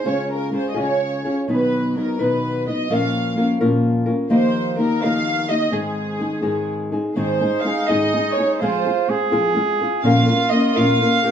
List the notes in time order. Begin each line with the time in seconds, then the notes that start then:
0.05 C#3 G#3 C#4 F4 G#4 C#5
0.32 A#4
0.52 G#3 C#4 F4 G#4
0.56 C5
0.70 D#5
0.74 C#3 G#3 C#4 F4 G#4
0.80 C#5
1.24 C#4 F4 G#4
1.48 B2 D#3 F#3 B3 D#4 B4
1.96 F#3 B3 D#4 A#4 B4
2.19 B2 D#3 F#3 B3 D#4 B4
2.67 F#3 B3 D#4 B4 D#5
2.90 A#2 F3 A#3 C#4 F4 A#4 F5
3.36 A#3 C#4 F4 A#4
3.61 A#2 F3 A#3 C#4 F4 A#4
4.06 A#3 C#4 F4 A#4
4.30 D#3 F3 A#3 D#4 G4 C5 D#5
4.78 A#3 D#4 G4 A#4 D#5
5.02 D#3 F3 A#3 D#4 G4 D#5 F5
5.49 A#3 D#4 G4 D#5
5.71 G#2 D#3 G#3 C4 D#4 G#4
6.20 G#3 C4 D#4 G#4
6.42 G#2 D#3 G#3 C4 D#4 G#4
6.92 G#3 C4 D#4 G#4
7.16 G#2 D#3 G#3 C4 D#4 G#4 C5
7.41 G#3 C4 D#4 G#4
7.61 F5
7.65 G#3 C4 D#4 G#4
7.86 G#4 D#5
7.90 G#2 D#3 G#3 C4 D#4
8.14 G#3 C4 D#4 G#4
8.32 C#5
8.38 G#3 C4 D#4 G#4
8.58 F3 G#3 F4 C5
8.62 C4 F4 G#4
8.86 C4 F4 G#4
9.08 G#3 C4 F4 G#4
9.32 F3 G#3 C4 F4 G#4
9.56 G#3 C4 F4 G#4
9.81 C4 F4 G#4
10.03 A#2 F3 A#3 C#4 F4 A#4 F5
10.28 A#3 C#4 F4 A#4
10.51 A#3 C#4 F4 A#4 D#5
10.75 A#2 F3 A#3 C#4 F4 A#4 F5
11.00 A#3 C#4 F4 A#4
11.22 A#3 C#4 F4 G4 A#4